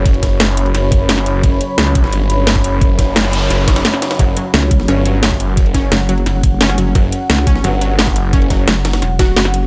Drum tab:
RD |xxx-x-xxx-x-xxx-|x-x-x-x-x-x-x-x-|x-x-x-xxx-xxx-xx|x-x-x-x-x-x-x-x-|
HH |x-x-x-x-x-x-x-x-|x-x-x-x-x-x-x-x-|x-x-x-x-x-x-x-x-|x-x-x-x-x-x-x-x-|
SD |--o-o---o---oo--|----oo-o----oo--|--o-oo--o-oooooo|----oo-o----o---|
BD |o-o-------o-----|o-----o------o--|o-o-------o-----|o-----o------o--|

RD |xxx-x-xxx-x-xxx-|x-x-x-x-x-x-x-x-|xxx-x-xxx-x-xxx-|
HH |x-x-x-x-x-x-x-x-|x-x-x-x-x-x-x-x-|x-x-x-x-x-x-x-x-|
SD |--o-o---o---oo--|----oo-o----oo--|--o-o-ooo-o-oo--|
BD |o-o-------o-----|o-----o------o--|o-o-------o-----|